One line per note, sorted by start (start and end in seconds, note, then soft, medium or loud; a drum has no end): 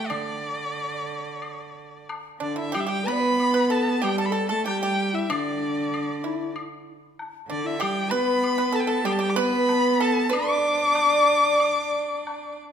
0.00 0.12 A3 medium
0.07 1.06 D4 medium
0.07 2.05 D5 medium
0.07 high woodblock medium
0.11 2.07 D3 medium
1.06 1.22 C#4 medium
1.22 1.38 C4 medium
1.38 2.03 B3 medium
1.42 high woodblock soft
2.09 high woodblock soft
2.09 low woodblock soft
2.40 2.76 D3 medium
2.40 2.56 D4 medium
2.40 2.77 D4 medium
2.40 2.57 D5 medium
2.56 2.72 E4 medium
2.56 2.76 E5 medium
2.72 3.08 G3 medium
2.72 2.85 G4 medium
2.72 2.88 G4 medium
2.72 2.81 G5 medium
2.72 high woodblock medium
2.80 2.91 E5 medium
2.87 3.05 G4 medium
2.87 3.06 G4 medium
2.87 3.09 G5 medium
3.04 4.04 B3 medium
3.04 3.14 B4 medium
3.04 3.52 B4 medium
3.04 3.73 B5 loud
3.12 3.22 D5 medium
3.20 3.72 B4 medium
3.40 high woodblock soft
3.54 3.69 B4 medium
3.70 4.00 A4 medium
3.70 4.03 A4 medium
3.70 4.05 A5 medium
4.02 4.52 G3 medium
4.02 4.17 G4 medium
4.02 4.32 G4 medium
4.02 4.19 G5 medium
4.02 high woodblock medium
4.18 4.31 A4 medium
4.18 4.27 A5 medium
4.26 4.34 B5 medium
4.30 4.49 A4 medium
4.30 4.48 A4 medium
4.30 4.49 A5 medium
4.49 4.68 A3 medium
4.49 4.65 A4 medium
4.49 4.65 A5 medium
4.66 5.32 G3 medium
4.66 4.81 G4 medium
4.66 5.15 G4 medium
4.66 4.81 G5 medium
4.66 low woodblock soft
4.83 5.27 G4 medium
4.83 5.16 G5 medium
5.14 5.31 E4 medium
5.14 5.32 E5 medium
5.29 6.56 D3 medium
5.29 6.25 D4 medium
5.29 6.20 D4 medium
5.29 6.56 D5 medium
5.29 high woodblock medium
5.94 high woodblock medium
6.23 6.55 E4 medium
6.23 6.53 E4 medium
6.56 high woodblock medium
7.19 low woodblock soft
7.48 7.83 D3 medium
7.48 7.66 D4 medium
7.48 7.78 D4 medium
7.48 7.68 D5 medium
7.65 7.79 E4 medium
7.65 7.83 E5 medium
7.80 8.12 G3 medium
7.80 8.09 G4 medium
7.80 8.13 G5 medium
7.80 high woodblock medium
8.09 9.06 B3 medium
8.09 8.69 B4 loud
8.09 8.55 B4 medium
8.09 8.77 B5 loud
8.44 high woodblock soft
8.58 8.72 B4 medium
8.72 8.86 A4 medium
8.72 8.82 A5 medium
8.80 8.90 G5 medium
8.86 9.03 A4 medium
8.86 9.04 A4 medium
8.86 9.07 A5 medium
9.04 9.38 G3 medium
9.04 9.37 G4 medium
9.04 9.18 G4 medium
9.04 9.14 G5 loud
9.04 high woodblock soft
9.12 9.22 A5 medium
9.19 9.36 G4 medium
9.19 9.31 G5 loud
9.30 9.41 D6 medium
9.36 10.33 B3 loud
9.36 10.01 B4 medium
9.36 9.96 B4 medium
9.36 10.04 B5 loud
9.69 low woodblock soft
10.00 10.31 A4 medium
10.00 10.29 A4 medium
10.00 10.36 A5 loud
10.29 12.60 D4 loud
10.29 10.64 B4 medium
10.29 12.56 D5 loud
10.29 high woodblock medium
10.34 12.62 D6 loud
10.64 10.82 C5 medium
10.82 11.00 C#5 medium
10.95 high woodblock soft
10.95 low woodblock soft
11.00 12.55 D5 medium
11.60 high woodblock medium
12.27 low woodblock medium